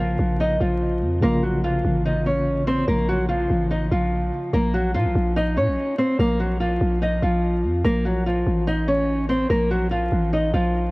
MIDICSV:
0, 0, Header, 1, 4, 480
1, 0, Start_track
1, 0, Key_signature, -5, "minor"
1, 0, Tempo, 413793
1, 1421, Time_signature, 4, 2, 24, 8
1, 12657, End_track
2, 0, Start_track
2, 0, Title_t, "Nylon-string guitar"
2, 0, Program_c, 0, 24
2, 0, Note_on_c, 0, 53, 68
2, 0, Note_on_c, 0, 65, 80
2, 430, Note_off_c, 0, 65, 0
2, 435, Note_off_c, 0, 53, 0
2, 463, Note_on_c, 0, 63, 83
2, 472, Note_on_c, 0, 75, 70
2, 683, Note_off_c, 0, 63, 0
2, 688, Note_off_c, 0, 75, 0
2, 703, Note_on_c, 0, 65, 76
2, 712, Note_on_c, 0, 53, 57
2, 1378, Note_off_c, 0, 65, 0
2, 1383, Note_off_c, 0, 53, 0
2, 1418, Note_on_c, 0, 70, 102
2, 1427, Note_on_c, 0, 58, 86
2, 1641, Note_off_c, 0, 70, 0
2, 1646, Note_off_c, 0, 58, 0
2, 1657, Note_on_c, 0, 66, 78
2, 1667, Note_on_c, 0, 54, 62
2, 1880, Note_off_c, 0, 66, 0
2, 1886, Note_off_c, 0, 54, 0
2, 1902, Note_on_c, 0, 65, 78
2, 1911, Note_on_c, 0, 53, 66
2, 2352, Note_off_c, 0, 65, 0
2, 2357, Note_off_c, 0, 53, 0
2, 2381, Note_on_c, 0, 63, 91
2, 2390, Note_on_c, 0, 75, 72
2, 2602, Note_off_c, 0, 63, 0
2, 2607, Note_off_c, 0, 75, 0
2, 2620, Note_on_c, 0, 61, 82
2, 2630, Note_on_c, 0, 73, 60
2, 3072, Note_off_c, 0, 61, 0
2, 3077, Note_off_c, 0, 73, 0
2, 3098, Note_on_c, 0, 60, 95
2, 3108, Note_on_c, 0, 72, 67
2, 3321, Note_off_c, 0, 60, 0
2, 3326, Note_off_c, 0, 72, 0
2, 3340, Note_on_c, 0, 70, 102
2, 3349, Note_on_c, 0, 58, 81
2, 3562, Note_off_c, 0, 70, 0
2, 3567, Note_off_c, 0, 58, 0
2, 3582, Note_on_c, 0, 66, 83
2, 3592, Note_on_c, 0, 54, 66
2, 3803, Note_off_c, 0, 66, 0
2, 3808, Note_off_c, 0, 54, 0
2, 3814, Note_on_c, 0, 65, 91
2, 3823, Note_on_c, 0, 53, 63
2, 4268, Note_off_c, 0, 65, 0
2, 4273, Note_off_c, 0, 53, 0
2, 4299, Note_on_c, 0, 63, 82
2, 4309, Note_on_c, 0, 75, 63
2, 4522, Note_off_c, 0, 63, 0
2, 4527, Note_off_c, 0, 75, 0
2, 4542, Note_on_c, 0, 65, 80
2, 4551, Note_on_c, 0, 53, 63
2, 5218, Note_off_c, 0, 65, 0
2, 5223, Note_off_c, 0, 53, 0
2, 5261, Note_on_c, 0, 70, 99
2, 5270, Note_on_c, 0, 58, 85
2, 5483, Note_off_c, 0, 70, 0
2, 5488, Note_off_c, 0, 58, 0
2, 5499, Note_on_c, 0, 66, 83
2, 5509, Note_on_c, 0, 54, 64
2, 5721, Note_off_c, 0, 66, 0
2, 5727, Note_off_c, 0, 54, 0
2, 5738, Note_on_c, 0, 65, 91
2, 5747, Note_on_c, 0, 53, 71
2, 6190, Note_off_c, 0, 65, 0
2, 6195, Note_off_c, 0, 53, 0
2, 6222, Note_on_c, 0, 63, 98
2, 6231, Note_on_c, 0, 75, 71
2, 6443, Note_off_c, 0, 63, 0
2, 6448, Note_off_c, 0, 75, 0
2, 6457, Note_on_c, 0, 61, 77
2, 6466, Note_on_c, 0, 73, 64
2, 6910, Note_off_c, 0, 61, 0
2, 6915, Note_off_c, 0, 73, 0
2, 6938, Note_on_c, 0, 60, 91
2, 6947, Note_on_c, 0, 72, 73
2, 7161, Note_off_c, 0, 60, 0
2, 7166, Note_off_c, 0, 72, 0
2, 7184, Note_on_c, 0, 70, 113
2, 7193, Note_on_c, 0, 58, 90
2, 7404, Note_off_c, 0, 70, 0
2, 7409, Note_off_c, 0, 58, 0
2, 7420, Note_on_c, 0, 66, 83
2, 7429, Note_on_c, 0, 54, 68
2, 7642, Note_off_c, 0, 66, 0
2, 7647, Note_off_c, 0, 54, 0
2, 7657, Note_on_c, 0, 65, 82
2, 7667, Note_on_c, 0, 53, 72
2, 8110, Note_off_c, 0, 65, 0
2, 8115, Note_off_c, 0, 53, 0
2, 8142, Note_on_c, 0, 63, 84
2, 8151, Note_on_c, 0, 75, 73
2, 8363, Note_off_c, 0, 63, 0
2, 8368, Note_off_c, 0, 75, 0
2, 8381, Note_on_c, 0, 65, 77
2, 8390, Note_on_c, 0, 53, 57
2, 9058, Note_off_c, 0, 65, 0
2, 9062, Note_off_c, 0, 53, 0
2, 9099, Note_on_c, 0, 70, 103
2, 9108, Note_on_c, 0, 58, 86
2, 9321, Note_off_c, 0, 70, 0
2, 9326, Note_off_c, 0, 58, 0
2, 9336, Note_on_c, 0, 66, 80
2, 9346, Note_on_c, 0, 54, 65
2, 9560, Note_off_c, 0, 66, 0
2, 9565, Note_off_c, 0, 54, 0
2, 9583, Note_on_c, 0, 65, 82
2, 9592, Note_on_c, 0, 53, 65
2, 10033, Note_off_c, 0, 65, 0
2, 10038, Note_off_c, 0, 53, 0
2, 10059, Note_on_c, 0, 63, 97
2, 10069, Note_on_c, 0, 75, 74
2, 10282, Note_off_c, 0, 63, 0
2, 10287, Note_off_c, 0, 75, 0
2, 10300, Note_on_c, 0, 61, 82
2, 10309, Note_on_c, 0, 73, 61
2, 10751, Note_off_c, 0, 61, 0
2, 10756, Note_off_c, 0, 73, 0
2, 10778, Note_on_c, 0, 60, 95
2, 10787, Note_on_c, 0, 72, 68
2, 11001, Note_off_c, 0, 60, 0
2, 11006, Note_off_c, 0, 72, 0
2, 11020, Note_on_c, 0, 70, 106
2, 11029, Note_on_c, 0, 58, 84
2, 11242, Note_off_c, 0, 70, 0
2, 11247, Note_off_c, 0, 58, 0
2, 11261, Note_on_c, 0, 66, 86
2, 11271, Note_on_c, 0, 54, 67
2, 11483, Note_off_c, 0, 66, 0
2, 11488, Note_off_c, 0, 54, 0
2, 11495, Note_on_c, 0, 65, 90
2, 11504, Note_on_c, 0, 53, 67
2, 11949, Note_off_c, 0, 65, 0
2, 11954, Note_off_c, 0, 53, 0
2, 11979, Note_on_c, 0, 63, 85
2, 11988, Note_on_c, 0, 75, 67
2, 12202, Note_off_c, 0, 63, 0
2, 12206, Note_off_c, 0, 75, 0
2, 12222, Note_on_c, 0, 65, 82
2, 12231, Note_on_c, 0, 53, 62
2, 12657, Note_off_c, 0, 53, 0
2, 12657, Note_off_c, 0, 65, 0
2, 12657, End_track
3, 0, Start_track
3, 0, Title_t, "Tine electric piano"
3, 0, Program_c, 1, 4
3, 0, Control_c, 1, 64, 127
3, 0, Note_on_c, 1, 49, 69
3, 0, Note_on_c, 1, 58, 65
3, 0, Note_on_c, 1, 65, 73
3, 1367, Note_off_c, 1, 49, 0
3, 1375, Note_off_c, 1, 58, 0
3, 1383, Note_off_c, 1, 65, 0
3, 1403, Note_on_c, 1, 49, 67
3, 1419, Note_on_c, 1, 58, 62
3, 1434, Note_on_c, 1, 65, 75
3, 1437, Control_c, 1, 64, 0
3, 1638, Control_c, 1, 64, 127
3, 5205, Note_off_c, 1, 49, 0
3, 5213, Note_off_c, 1, 58, 0
3, 5221, Note_off_c, 1, 65, 0
3, 5278, Control_c, 1, 64, 0
3, 12657, End_track
4, 0, Start_track
4, 0, Title_t, "808-style bass"
4, 0, Program_c, 2, 38
4, 0, Note_on_c, 2, 34, 108
4, 192, Note_off_c, 2, 34, 0
4, 221, Note_on_c, 2, 34, 111
4, 682, Note_off_c, 2, 34, 0
4, 700, Note_on_c, 2, 34, 102
4, 1181, Note_on_c, 2, 41, 102
4, 1198, Note_off_c, 2, 34, 0
4, 1409, Note_off_c, 2, 41, 0
4, 1421, Note_on_c, 2, 34, 114
4, 2112, Note_off_c, 2, 34, 0
4, 2141, Note_on_c, 2, 33, 103
4, 3294, Note_off_c, 2, 33, 0
4, 3340, Note_on_c, 2, 34, 113
4, 4032, Note_off_c, 2, 34, 0
4, 4060, Note_on_c, 2, 33, 106
4, 4521, Note_off_c, 2, 33, 0
4, 4540, Note_on_c, 2, 34, 105
4, 5001, Note_off_c, 2, 34, 0
4, 5261, Note_on_c, 2, 34, 109
4, 5740, Note_on_c, 2, 46, 96
4, 5758, Note_off_c, 2, 34, 0
4, 5860, Note_on_c, 2, 34, 102
4, 5878, Note_off_c, 2, 46, 0
4, 5974, Note_off_c, 2, 34, 0
4, 5980, Note_on_c, 2, 34, 115
4, 6461, Note_on_c, 2, 46, 97
4, 6478, Note_off_c, 2, 34, 0
4, 6580, Note_on_c, 2, 34, 101
4, 6598, Note_off_c, 2, 46, 0
4, 6694, Note_off_c, 2, 34, 0
4, 7180, Note_on_c, 2, 34, 110
4, 7872, Note_off_c, 2, 34, 0
4, 7901, Note_on_c, 2, 34, 113
4, 8361, Note_off_c, 2, 34, 0
4, 8381, Note_on_c, 2, 34, 107
4, 8860, Note_on_c, 2, 41, 102
4, 8877, Note_off_c, 2, 34, 0
4, 9088, Note_off_c, 2, 41, 0
4, 9100, Note_on_c, 2, 34, 112
4, 9792, Note_off_c, 2, 34, 0
4, 9820, Note_on_c, 2, 33, 106
4, 10974, Note_off_c, 2, 33, 0
4, 11020, Note_on_c, 2, 34, 114
4, 11712, Note_off_c, 2, 34, 0
4, 11740, Note_on_c, 2, 33, 108
4, 12201, Note_off_c, 2, 33, 0
4, 12220, Note_on_c, 2, 34, 105
4, 12657, Note_off_c, 2, 34, 0
4, 12657, End_track
0, 0, End_of_file